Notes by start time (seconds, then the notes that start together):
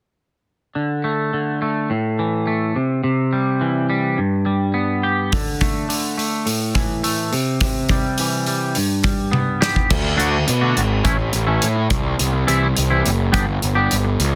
0.75 D3
1.04 A3
1.33 D3
1.62 A3
1.90 A2
2.19 E3
2.47 A3
2.76 C3
3.03 C3
3.33 G3
3.61 E3
3.90 G3
4.18 G2
4.46 G3
4.74 B3
5.03 G4
5.32 D3, kick, open hi-hat
5.61 A3, kick, open hi-hat
5.89 D3, open hi-hat
6.18 A3, open hi-hat
6.46 A2, open hi-hat
6.75 E3, kick, open hi-hat
7.04 A3, open hi-hat
7.33 C3, open hi-hat
7.61 C3, kick, open hi-hat
7.89 G3, kick, open hi-hat
8.18 E3, open hi-hat
8.46 G3, open hi-hat
8.75 G2, open hi-hat
9.04 G3, kick, open hi-hat
9.31 B3, high tom
9.61 G4, snare
9.76 kick
9.90 D2, kick, crash
10.03 muted clean electric guitar stroke
10.16 D2 D3 A3 D4 F#4, closed hi-hat
10.47 B2, muted clean electric guitar stroke, closed hi-hat
10.61 D3 A3 D4 F#4
10.77 G#1, closed hi-hat
11.04 A1 E3 A3 C#4 E4, kick, closed hi-hat
11.18 muted clean electric guitar stroke
11.33 A1, closed hi-hat
11.47 E3 A3 C#4 E4
11.62 A2, closed hi-hat
11.76 muted clean electric guitar stroke
11.90 C2, kick, closed hi-hat
12.19 C2, closed hi-hat
12.33 muted clean electric guitar stroke
12.47 C2 E3 G3 C4 E4, closed hi-hat
12.75 C2, muted clean electric guitar stroke, closed hi-hat
12.90 E3 G3 C4 E4
13.06 F#1, closed hi-hat
13.32 G1 G3 B3 D4 G4, kick, closed hi-hat
13.47 muted clean electric guitar stroke
13.62 G1, closed hi-hat
13.75 G3 B3 D4 G4
13.91 G1, closed hi-hat
14.04 muted clean electric guitar stroke
14.20 C#2, closed hi-hat